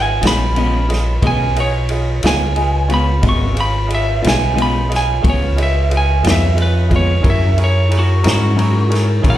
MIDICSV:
0, 0, Header, 1, 7, 480
1, 0, Start_track
1, 0, Tempo, 669643
1, 2315, Time_signature, 12, 3, 24, 8
1, 6721, End_track
2, 0, Start_track
2, 0, Title_t, "Lead electric guitar"
2, 0, Program_c, 0, 29
2, 0, Note_on_c, 0, 80, 76
2, 173, Note_off_c, 0, 80, 0
2, 195, Note_on_c, 0, 83, 91
2, 874, Note_off_c, 0, 83, 0
2, 909, Note_on_c, 0, 80, 79
2, 1125, Note_off_c, 0, 80, 0
2, 1149, Note_on_c, 0, 73, 85
2, 1365, Note_off_c, 0, 73, 0
2, 1625, Note_on_c, 0, 80, 89
2, 2076, Note_off_c, 0, 80, 0
2, 2105, Note_on_c, 0, 83, 73
2, 2323, Note_off_c, 0, 83, 0
2, 2357, Note_on_c, 0, 85, 74
2, 2570, Note_off_c, 0, 85, 0
2, 2584, Note_on_c, 0, 83, 74
2, 2803, Note_off_c, 0, 83, 0
2, 2828, Note_on_c, 0, 76, 84
2, 3045, Note_off_c, 0, 76, 0
2, 3074, Note_on_c, 0, 80, 86
2, 3288, Note_off_c, 0, 80, 0
2, 3312, Note_on_c, 0, 83, 78
2, 3527, Note_off_c, 0, 83, 0
2, 3557, Note_on_c, 0, 80, 88
2, 3770, Note_off_c, 0, 80, 0
2, 3796, Note_on_c, 0, 73, 83
2, 4009, Note_off_c, 0, 73, 0
2, 4033, Note_on_c, 0, 76, 77
2, 4247, Note_off_c, 0, 76, 0
2, 4281, Note_on_c, 0, 80, 81
2, 4491, Note_off_c, 0, 80, 0
2, 4525, Note_on_c, 0, 76, 77
2, 4733, Note_off_c, 0, 76, 0
2, 4746, Note_on_c, 0, 71, 77
2, 4963, Note_off_c, 0, 71, 0
2, 4988, Note_on_c, 0, 73, 76
2, 5204, Note_off_c, 0, 73, 0
2, 5232, Note_on_c, 0, 76, 79
2, 5446, Note_off_c, 0, 76, 0
2, 5475, Note_on_c, 0, 73, 70
2, 5687, Note_off_c, 0, 73, 0
2, 5726, Note_on_c, 0, 66, 82
2, 5932, Note_off_c, 0, 66, 0
2, 5958, Note_on_c, 0, 66, 98
2, 6401, Note_off_c, 0, 66, 0
2, 6666, Note_on_c, 0, 78, 75
2, 6721, Note_off_c, 0, 78, 0
2, 6721, End_track
3, 0, Start_track
3, 0, Title_t, "Tonewheel organ"
3, 0, Program_c, 1, 16
3, 0, Note_on_c, 1, 65, 66
3, 0, Note_on_c, 1, 71, 58
3, 0, Note_on_c, 1, 73, 70
3, 2292, Note_off_c, 1, 65, 0
3, 2292, Note_off_c, 1, 71, 0
3, 2292, Note_off_c, 1, 73, 0
3, 2327, Note_on_c, 1, 76, 59
3, 2329, Note_on_c, 1, 66, 53
3, 2335, Note_on_c, 1, 60, 56
3, 2559, Note_on_c, 1, 65, 66
3, 2560, Note_on_c, 1, 71, 70
3, 2560, Note_on_c, 1, 73, 62
3, 2561, Note_off_c, 1, 76, 0
3, 2562, Note_off_c, 1, 66, 0
3, 2565, Note_off_c, 1, 60, 0
3, 5169, Note_off_c, 1, 65, 0
3, 5170, Note_off_c, 1, 71, 0
3, 5170, Note_off_c, 1, 73, 0
3, 5184, Note_on_c, 1, 64, 56
3, 5184, Note_on_c, 1, 68, 62
3, 5189, Note_on_c, 1, 70, 61
3, 6721, Note_off_c, 1, 64, 0
3, 6721, Note_off_c, 1, 68, 0
3, 6721, Note_off_c, 1, 70, 0
3, 6721, End_track
4, 0, Start_track
4, 0, Title_t, "Upright piano"
4, 0, Program_c, 2, 0
4, 0, Note_on_c, 2, 65, 50
4, 0, Note_on_c, 2, 68, 44
4, 0, Note_on_c, 2, 71, 49
4, 0, Note_on_c, 2, 75, 59
4, 91, Note_off_c, 2, 68, 0
4, 93, Note_off_c, 2, 65, 0
4, 96, Note_off_c, 2, 71, 0
4, 98, Note_off_c, 2, 75, 0
4, 145, Note_on_c, 2, 65, 49
4, 152, Note_on_c, 2, 68, 40
4, 156, Note_on_c, 2, 71, 45
4, 161, Note_on_c, 2, 75, 54
4, 329, Note_off_c, 2, 65, 0
4, 333, Note_off_c, 2, 68, 0
4, 334, Note_off_c, 2, 71, 0
4, 337, Note_off_c, 2, 75, 0
4, 394, Note_on_c, 2, 65, 46
4, 403, Note_on_c, 2, 68, 47
4, 405, Note_on_c, 2, 71, 40
4, 407, Note_on_c, 2, 75, 54
4, 574, Note_off_c, 2, 65, 0
4, 578, Note_off_c, 2, 68, 0
4, 579, Note_off_c, 2, 71, 0
4, 580, Note_off_c, 2, 75, 0
4, 629, Note_on_c, 2, 65, 51
4, 634, Note_on_c, 2, 68, 47
4, 639, Note_on_c, 2, 71, 45
4, 642, Note_on_c, 2, 75, 56
4, 811, Note_off_c, 2, 65, 0
4, 814, Note_off_c, 2, 68, 0
4, 817, Note_off_c, 2, 71, 0
4, 818, Note_off_c, 2, 75, 0
4, 871, Note_on_c, 2, 65, 53
4, 874, Note_on_c, 2, 68, 47
4, 876, Note_on_c, 2, 71, 52
4, 881, Note_on_c, 2, 75, 59
4, 1052, Note_off_c, 2, 65, 0
4, 1054, Note_off_c, 2, 68, 0
4, 1055, Note_off_c, 2, 71, 0
4, 1057, Note_off_c, 2, 75, 0
4, 1116, Note_on_c, 2, 65, 56
4, 1116, Note_on_c, 2, 68, 49
4, 1121, Note_on_c, 2, 71, 51
4, 1124, Note_on_c, 2, 75, 55
4, 1295, Note_off_c, 2, 65, 0
4, 1295, Note_off_c, 2, 68, 0
4, 1298, Note_off_c, 2, 71, 0
4, 1299, Note_off_c, 2, 75, 0
4, 1354, Note_on_c, 2, 65, 51
4, 1357, Note_on_c, 2, 68, 46
4, 1365, Note_on_c, 2, 75, 58
4, 1368, Note_on_c, 2, 71, 45
4, 1534, Note_off_c, 2, 65, 0
4, 1536, Note_off_c, 2, 68, 0
4, 1540, Note_off_c, 2, 75, 0
4, 1541, Note_off_c, 2, 71, 0
4, 1595, Note_on_c, 2, 65, 53
4, 1600, Note_on_c, 2, 68, 46
4, 1604, Note_on_c, 2, 71, 43
4, 1604, Note_on_c, 2, 75, 52
4, 1775, Note_off_c, 2, 65, 0
4, 1777, Note_off_c, 2, 68, 0
4, 1779, Note_off_c, 2, 71, 0
4, 1779, Note_off_c, 2, 75, 0
4, 1829, Note_on_c, 2, 68, 46
4, 1831, Note_on_c, 2, 65, 47
4, 1834, Note_on_c, 2, 71, 49
4, 1838, Note_on_c, 2, 75, 56
4, 2012, Note_off_c, 2, 68, 0
4, 2013, Note_off_c, 2, 65, 0
4, 2015, Note_off_c, 2, 71, 0
4, 2017, Note_off_c, 2, 75, 0
4, 2062, Note_on_c, 2, 65, 45
4, 2063, Note_on_c, 2, 68, 42
4, 2064, Note_on_c, 2, 71, 43
4, 2068, Note_on_c, 2, 73, 50
4, 2248, Note_off_c, 2, 65, 0
4, 2249, Note_off_c, 2, 68, 0
4, 2249, Note_off_c, 2, 71, 0
4, 2251, Note_off_c, 2, 73, 0
4, 2299, Note_on_c, 2, 65, 55
4, 2304, Note_on_c, 2, 68, 54
4, 2306, Note_on_c, 2, 71, 51
4, 2310, Note_on_c, 2, 75, 65
4, 2487, Note_off_c, 2, 65, 0
4, 2490, Note_off_c, 2, 68, 0
4, 2490, Note_off_c, 2, 71, 0
4, 2492, Note_off_c, 2, 75, 0
4, 2541, Note_on_c, 2, 68, 42
4, 2542, Note_on_c, 2, 65, 49
4, 2544, Note_on_c, 2, 71, 40
4, 2552, Note_on_c, 2, 77, 56
4, 2728, Note_off_c, 2, 65, 0
4, 2728, Note_off_c, 2, 68, 0
4, 2729, Note_off_c, 2, 71, 0
4, 2734, Note_off_c, 2, 77, 0
4, 2769, Note_on_c, 2, 65, 50
4, 2775, Note_on_c, 2, 68, 50
4, 2781, Note_on_c, 2, 71, 48
4, 2783, Note_on_c, 2, 75, 56
4, 2962, Note_off_c, 2, 65, 0
4, 2965, Note_off_c, 2, 68, 0
4, 2968, Note_off_c, 2, 71, 0
4, 2969, Note_off_c, 2, 75, 0
4, 3017, Note_on_c, 2, 68, 41
4, 3018, Note_on_c, 2, 65, 44
4, 3023, Note_on_c, 2, 71, 42
4, 3028, Note_on_c, 2, 75, 53
4, 3206, Note_off_c, 2, 68, 0
4, 3207, Note_off_c, 2, 65, 0
4, 3209, Note_off_c, 2, 71, 0
4, 3212, Note_off_c, 2, 75, 0
4, 3250, Note_on_c, 2, 65, 50
4, 3256, Note_on_c, 2, 68, 48
4, 3262, Note_on_c, 2, 71, 45
4, 3267, Note_on_c, 2, 75, 55
4, 3443, Note_off_c, 2, 65, 0
4, 3445, Note_off_c, 2, 68, 0
4, 3449, Note_off_c, 2, 71, 0
4, 3451, Note_off_c, 2, 75, 0
4, 3500, Note_on_c, 2, 65, 48
4, 3502, Note_on_c, 2, 68, 44
4, 3505, Note_on_c, 2, 71, 49
4, 3510, Note_on_c, 2, 75, 52
4, 3688, Note_off_c, 2, 65, 0
4, 3688, Note_off_c, 2, 68, 0
4, 3690, Note_off_c, 2, 71, 0
4, 3692, Note_off_c, 2, 75, 0
4, 3738, Note_on_c, 2, 65, 47
4, 3738, Note_on_c, 2, 68, 48
4, 3746, Note_on_c, 2, 73, 60
4, 3747, Note_on_c, 2, 71, 48
4, 3926, Note_off_c, 2, 65, 0
4, 3926, Note_off_c, 2, 68, 0
4, 3930, Note_off_c, 2, 73, 0
4, 3931, Note_off_c, 2, 71, 0
4, 3982, Note_on_c, 2, 65, 54
4, 3989, Note_on_c, 2, 71, 49
4, 3991, Note_on_c, 2, 68, 46
4, 3996, Note_on_c, 2, 75, 59
4, 4168, Note_off_c, 2, 65, 0
4, 4172, Note_off_c, 2, 71, 0
4, 4173, Note_off_c, 2, 68, 0
4, 4175, Note_off_c, 2, 75, 0
4, 4220, Note_on_c, 2, 65, 49
4, 4224, Note_on_c, 2, 68, 46
4, 4228, Note_on_c, 2, 71, 46
4, 4234, Note_on_c, 2, 75, 53
4, 4407, Note_off_c, 2, 65, 0
4, 4409, Note_off_c, 2, 68, 0
4, 4411, Note_off_c, 2, 71, 0
4, 4414, Note_off_c, 2, 75, 0
4, 4456, Note_on_c, 2, 65, 47
4, 4460, Note_on_c, 2, 68, 42
4, 4464, Note_on_c, 2, 71, 45
4, 4469, Note_on_c, 2, 75, 51
4, 4645, Note_off_c, 2, 65, 0
4, 4647, Note_off_c, 2, 68, 0
4, 4649, Note_off_c, 2, 71, 0
4, 4652, Note_off_c, 2, 75, 0
4, 4694, Note_on_c, 2, 65, 47
4, 4697, Note_on_c, 2, 68, 46
4, 4700, Note_on_c, 2, 71, 45
4, 4701, Note_on_c, 2, 75, 50
4, 4884, Note_off_c, 2, 65, 0
4, 4885, Note_off_c, 2, 68, 0
4, 4887, Note_off_c, 2, 71, 0
4, 4888, Note_off_c, 2, 75, 0
4, 4937, Note_on_c, 2, 65, 46
4, 4937, Note_on_c, 2, 68, 46
4, 4943, Note_on_c, 2, 71, 45
4, 4949, Note_on_c, 2, 75, 55
4, 5125, Note_off_c, 2, 65, 0
4, 5125, Note_off_c, 2, 68, 0
4, 5128, Note_off_c, 2, 71, 0
4, 5131, Note_off_c, 2, 75, 0
4, 5171, Note_on_c, 2, 64, 52
4, 5173, Note_on_c, 2, 68, 51
4, 5181, Note_on_c, 2, 70, 52
4, 5184, Note_on_c, 2, 73, 63
4, 5362, Note_off_c, 2, 64, 0
4, 5363, Note_off_c, 2, 68, 0
4, 5367, Note_off_c, 2, 70, 0
4, 5369, Note_off_c, 2, 73, 0
4, 5421, Note_on_c, 2, 64, 51
4, 5425, Note_on_c, 2, 68, 46
4, 5430, Note_on_c, 2, 73, 55
4, 5433, Note_on_c, 2, 70, 45
4, 5607, Note_off_c, 2, 64, 0
4, 5609, Note_off_c, 2, 68, 0
4, 5612, Note_off_c, 2, 73, 0
4, 5613, Note_off_c, 2, 70, 0
4, 5656, Note_on_c, 2, 64, 48
4, 5662, Note_on_c, 2, 68, 46
4, 5664, Note_on_c, 2, 70, 46
4, 5670, Note_on_c, 2, 73, 57
4, 5844, Note_off_c, 2, 64, 0
4, 5847, Note_off_c, 2, 68, 0
4, 5848, Note_off_c, 2, 70, 0
4, 5851, Note_off_c, 2, 73, 0
4, 5897, Note_on_c, 2, 68, 45
4, 5901, Note_on_c, 2, 64, 44
4, 5903, Note_on_c, 2, 70, 41
4, 5911, Note_on_c, 2, 75, 49
4, 6085, Note_off_c, 2, 68, 0
4, 6086, Note_off_c, 2, 64, 0
4, 6087, Note_off_c, 2, 70, 0
4, 6091, Note_off_c, 2, 75, 0
4, 6127, Note_on_c, 2, 64, 50
4, 6134, Note_on_c, 2, 68, 46
4, 6141, Note_on_c, 2, 70, 43
4, 6142, Note_on_c, 2, 73, 58
4, 6319, Note_off_c, 2, 64, 0
4, 6323, Note_off_c, 2, 68, 0
4, 6326, Note_off_c, 2, 70, 0
4, 6327, Note_off_c, 2, 73, 0
4, 6374, Note_on_c, 2, 68, 42
4, 6375, Note_on_c, 2, 64, 49
4, 6377, Note_on_c, 2, 70, 43
4, 6383, Note_on_c, 2, 73, 58
4, 6562, Note_off_c, 2, 68, 0
4, 6563, Note_off_c, 2, 64, 0
4, 6564, Note_off_c, 2, 70, 0
4, 6567, Note_off_c, 2, 73, 0
4, 6606, Note_on_c, 2, 64, 54
4, 6608, Note_on_c, 2, 68, 50
4, 6616, Note_on_c, 2, 70, 47
4, 6620, Note_on_c, 2, 73, 58
4, 6721, Note_off_c, 2, 64, 0
4, 6721, Note_off_c, 2, 68, 0
4, 6721, Note_off_c, 2, 70, 0
4, 6721, Note_off_c, 2, 73, 0
4, 6721, End_track
5, 0, Start_track
5, 0, Title_t, "Clean electric guitar"
5, 0, Program_c, 3, 27
5, 154, Note_on_c, 3, 65, 52
5, 166, Note_on_c, 3, 59, 51
5, 172, Note_on_c, 3, 56, 41
5, 298, Note_off_c, 3, 65, 0
5, 303, Note_off_c, 3, 59, 0
5, 306, Note_off_c, 3, 56, 0
5, 407, Note_on_c, 3, 49, 50
5, 411, Note_on_c, 3, 56, 53
5, 417, Note_on_c, 3, 59, 54
5, 424, Note_on_c, 3, 65, 60
5, 544, Note_off_c, 3, 49, 0
5, 546, Note_off_c, 3, 56, 0
5, 549, Note_off_c, 3, 59, 0
5, 553, Note_off_c, 3, 65, 0
5, 879, Note_on_c, 3, 56, 77
5, 880, Note_on_c, 3, 49, 66
5, 884, Note_on_c, 3, 59, 80
5, 885, Note_on_c, 3, 65, 75
5, 1020, Note_off_c, 3, 56, 0
5, 1021, Note_off_c, 3, 49, 0
5, 1023, Note_off_c, 3, 59, 0
5, 1023, Note_off_c, 3, 65, 0
5, 1605, Note_on_c, 3, 65, 56
5, 1616, Note_on_c, 3, 59, 46
5, 1622, Note_on_c, 3, 56, 39
5, 1744, Note_off_c, 3, 65, 0
5, 1750, Note_off_c, 3, 59, 0
5, 1753, Note_off_c, 3, 56, 0
5, 2073, Note_on_c, 3, 65, 51
5, 2082, Note_on_c, 3, 59, 50
5, 2090, Note_on_c, 3, 56, 44
5, 2218, Note_off_c, 3, 65, 0
5, 2223, Note_off_c, 3, 59, 0
5, 2226, Note_off_c, 3, 56, 0
5, 2317, Note_on_c, 3, 49, 56
5, 2324, Note_on_c, 3, 56, 59
5, 2324, Note_on_c, 3, 65, 72
5, 2325, Note_on_c, 3, 59, 77
5, 2460, Note_off_c, 3, 49, 0
5, 2463, Note_off_c, 3, 65, 0
5, 2464, Note_off_c, 3, 56, 0
5, 2464, Note_off_c, 3, 59, 0
5, 3028, Note_on_c, 3, 65, 59
5, 3038, Note_on_c, 3, 59, 51
5, 3044, Note_on_c, 3, 56, 44
5, 3176, Note_off_c, 3, 65, 0
5, 3181, Note_off_c, 3, 59, 0
5, 3184, Note_off_c, 3, 56, 0
5, 3266, Note_on_c, 3, 49, 48
5, 3272, Note_on_c, 3, 56, 53
5, 3280, Note_on_c, 3, 65, 52
5, 3281, Note_on_c, 3, 59, 57
5, 3415, Note_off_c, 3, 49, 0
5, 3418, Note_off_c, 3, 56, 0
5, 3422, Note_off_c, 3, 59, 0
5, 3422, Note_off_c, 3, 65, 0
5, 3755, Note_on_c, 3, 49, 71
5, 3755, Note_on_c, 3, 56, 72
5, 3758, Note_on_c, 3, 59, 71
5, 3762, Note_on_c, 3, 65, 81
5, 3899, Note_off_c, 3, 49, 0
5, 3899, Note_off_c, 3, 56, 0
5, 3901, Note_off_c, 3, 59, 0
5, 3903, Note_off_c, 3, 65, 0
5, 4479, Note_on_c, 3, 65, 51
5, 4487, Note_on_c, 3, 59, 42
5, 4492, Note_on_c, 3, 56, 41
5, 4621, Note_off_c, 3, 65, 0
5, 4624, Note_off_c, 3, 59, 0
5, 4627, Note_off_c, 3, 56, 0
5, 4958, Note_on_c, 3, 65, 46
5, 4969, Note_on_c, 3, 59, 49
5, 4974, Note_on_c, 3, 56, 41
5, 5100, Note_off_c, 3, 65, 0
5, 5105, Note_off_c, 3, 59, 0
5, 5108, Note_off_c, 3, 56, 0
5, 5189, Note_on_c, 3, 54, 64
5, 5193, Note_on_c, 3, 61, 64
5, 5196, Note_on_c, 3, 64, 61
5, 5200, Note_on_c, 3, 70, 73
5, 5335, Note_off_c, 3, 54, 0
5, 5337, Note_off_c, 3, 61, 0
5, 5338, Note_off_c, 3, 64, 0
5, 5341, Note_off_c, 3, 70, 0
5, 5905, Note_on_c, 3, 70, 58
5, 5911, Note_on_c, 3, 64, 54
5, 5917, Note_on_c, 3, 61, 46
5, 6052, Note_off_c, 3, 70, 0
5, 6056, Note_off_c, 3, 64, 0
5, 6058, Note_off_c, 3, 61, 0
5, 6134, Note_on_c, 3, 54, 50
5, 6144, Note_on_c, 3, 61, 51
5, 6149, Note_on_c, 3, 64, 52
5, 6150, Note_on_c, 3, 70, 54
5, 6287, Note_off_c, 3, 54, 0
5, 6292, Note_off_c, 3, 61, 0
5, 6295, Note_off_c, 3, 64, 0
5, 6295, Note_off_c, 3, 70, 0
5, 6619, Note_on_c, 3, 54, 68
5, 6624, Note_on_c, 3, 61, 72
5, 6631, Note_on_c, 3, 64, 75
5, 6633, Note_on_c, 3, 70, 73
5, 6721, Note_off_c, 3, 54, 0
5, 6721, Note_off_c, 3, 61, 0
5, 6721, Note_off_c, 3, 64, 0
5, 6721, Note_off_c, 3, 70, 0
5, 6721, End_track
6, 0, Start_track
6, 0, Title_t, "Fingered electric bass"
6, 0, Program_c, 4, 33
6, 0, Note_on_c, 4, 32, 73
6, 136, Note_off_c, 4, 32, 0
6, 163, Note_on_c, 4, 34, 86
6, 858, Note_off_c, 4, 34, 0
6, 881, Note_on_c, 4, 35, 80
6, 1577, Note_off_c, 4, 35, 0
6, 1605, Note_on_c, 4, 37, 98
6, 2299, Note_off_c, 4, 37, 0
6, 2314, Note_on_c, 4, 32, 77
6, 3013, Note_off_c, 4, 32, 0
6, 3047, Note_on_c, 4, 35, 81
6, 3740, Note_off_c, 4, 35, 0
6, 3757, Note_on_c, 4, 37, 79
6, 4454, Note_off_c, 4, 37, 0
6, 4470, Note_on_c, 4, 41, 84
6, 5170, Note_off_c, 4, 41, 0
6, 5190, Note_on_c, 4, 42, 71
6, 5889, Note_off_c, 4, 42, 0
6, 5915, Note_on_c, 4, 44, 85
6, 6611, Note_off_c, 4, 44, 0
6, 6627, Note_on_c, 4, 46, 70
6, 6721, Note_off_c, 4, 46, 0
6, 6721, End_track
7, 0, Start_track
7, 0, Title_t, "Drums"
7, 162, Note_on_c, 9, 51, 78
7, 182, Note_on_c, 9, 38, 93
7, 234, Note_off_c, 9, 51, 0
7, 254, Note_off_c, 9, 38, 0
7, 403, Note_on_c, 9, 51, 49
7, 474, Note_off_c, 9, 51, 0
7, 643, Note_on_c, 9, 51, 53
7, 663, Note_on_c, 9, 38, 31
7, 715, Note_off_c, 9, 51, 0
7, 735, Note_off_c, 9, 38, 0
7, 878, Note_on_c, 9, 36, 96
7, 878, Note_on_c, 9, 51, 72
7, 949, Note_off_c, 9, 36, 0
7, 949, Note_off_c, 9, 51, 0
7, 1121, Note_on_c, 9, 51, 56
7, 1193, Note_off_c, 9, 51, 0
7, 1353, Note_on_c, 9, 51, 54
7, 1425, Note_off_c, 9, 51, 0
7, 1596, Note_on_c, 9, 51, 75
7, 1616, Note_on_c, 9, 38, 105
7, 1668, Note_off_c, 9, 51, 0
7, 1688, Note_off_c, 9, 38, 0
7, 1834, Note_on_c, 9, 51, 50
7, 1906, Note_off_c, 9, 51, 0
7, 2076, Note_on_c, 9, 51, 57
7, 2148, Note_off_c, 9, 51, 0
7, 2314, Note_on_c, 9, 51, 78
7, 2317, Note_on_c, 9, 36, 101
7, 2386, Note_off_c, 9, 51, 0
7, 2389, Note_off_c, 9, 36, 0
7, 2556, Note_on_c, 9, 51, 58
7, 2628, Note_off_c, 9, 51, 0
7, 2798, Note_on_c, 9, 51, 58
7, 2870, Note_off_c, 9, 51, 0
7, 3042, Note_on_c, 9, 51, 74
7, 3062, Note_on_c, 9, 38, 101
7, 3114, Note_off_c, 9, 51, 0
7, 3134, Note_off_c, 9, 38, 0
7, 3285, Note_on_c, 9, 51, 60
7, 3356, Note_off_c, 9, 51, 0
7, 3524, Note_on_c, 9, 51, 59
7, 3544, Note_on_c, 9, 38, 31
7, 3595, Note_off_c, 9, 51, 0
7, 3615, Note_off_c, 9, 38, 0
7, 3758, Note_on_c, 9, 36, 86
7, 3759, Note_on_c, 9, 51, 73
7, 3830, Note_off_c, 9, 36, 0
7, 3831, Note_off_c, 9, 51, 0
7, 4001, Note_on_c, 9, 51, 62
7, 4073, Note_off_c, 9, 51, 0
7, 4238, Note_on_c, 9, 51, 56
7, 4309, Note_off_c, 9, 51, 0
7, 4476, Note_on_c, 9, 51, 74
7, 4496, Note_on_c, 9, 38, 109
7, 4547, Note_off_c, 9, 51, 0
7, 4567, Note_off_c, 9, 38, 0
7, 4715, Note_on_c, 9, 51, 50
7, 4786, Note_off_c, 9, 51, 0
7, 4953, Note_on_c, 9, 36, 69
7, 4953, Note_on_c, 9, 51, 53
7, 5024, Note_off_c, 9, 36, 0
7, 5024, Note_off_c, 9, 51, 0
7, 5192, Note_on_c, 9, 36, 103
7, 5192, Note_on_c, 9, 51, 73
7, 5263, Note_off_c, 9, 36, 0
7, 5264, Note_off_c, 9, 51, 0
7, 5432, Note_on_c, 9, 51, 54
7, 5503, Note_off_c, 9, 51, 0
7, 5674, Note_on_c, 9, 51, 61
7, 5745, Note_off_c, 9, 51, 0
7, 5907, Note_on_c, 9, 51, 77
7, 5928, Note_on_c, 9, 38, 99
7, 5979, Note_off_c, 9, 51, 0
7, 5999, Note_off_c, 9, 38, 0
7, 6155, Note_on_c, 9, 51, 54
7, 6227, Note_off_c, 9, 51, 0
7, 6390, Note_on_c, 9, 51, 58
7, 6410, Note_on_c, 9, 38, 31
7, 6462, Note_off_c, 9, 51, 0
7, 6482, Note_off_c, 9, 38, 0
7, 6625, Note_on_c, 9, 51, 84
7, 6626, Note_on_c, 9, 36, 97
7, 6697, Note_off_c, 9, 36, 0
7, 6697, Note_off_c, 9, 51, 0
7, 6721, End_track
0, 0, End_of_file